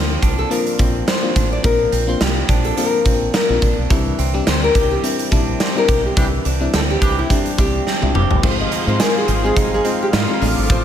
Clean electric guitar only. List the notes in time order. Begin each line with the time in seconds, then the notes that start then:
Already playing: F3 C4
0.23 D4
0.51 F3
0.79 C4
1.08 F3
1.36 D4
1.64 F3
1.92 C4
2.21 F3
2.49 D4
2.77 F3
3.06 C4
3.34 F3
3.62 D4
3.90 E3
4.18 C4
4.34 D4
4.47 C4
4.75 G4
5.04 C4
5.32 D4
5.61 C4
5.89 G4
6.17 E3
6.45 D4
6.74 C4
7.02 G4
7.30 C4
7.59 D4
7.87 C4
8.15 G4
8.43 F3
8.72 D#4
9.00 G#4
9.28 C4
9.56 D#4
9.85 C4
10.13 D#4
10.41 F3
10.70 F3